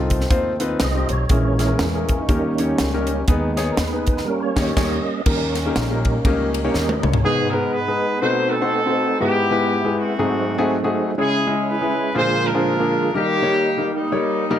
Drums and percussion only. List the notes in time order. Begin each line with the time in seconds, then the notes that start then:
0.10 kick, closed hi-hat
0.21 snare
0.31 kick, closed hi-hat
0.60 closed hi-hat
0.80 snare, closed hi-hat
1.09 closed hi-hat
1.29 kick, closed hi-hat
1.59 snare, closed hi-hat
1.79 snare, closed hi-hat
2.09 kick, closed hi-hat
2.29 kick, closed hi-hat
2.58 closed hi-hat
2.78 snare, closed hi-hat
3.07 closed hi-hat
3.28 kick, closed hi-hat
3.57 snare, closed hi-hat
3.77 snare, closed hi-hat
4.07 kick, closed hi-hat
4.17 snare
4.57 kick, snare, crash
4.77 kick, snare, crash
5.26 kick, crash
5.55 snare, ride
5.76 snare, ride
6.05 kick, ride
6.25 kick, ride
6.54 ride
6.74 snare
6.89 high tom
7.03 mid tom
7.14 floor tom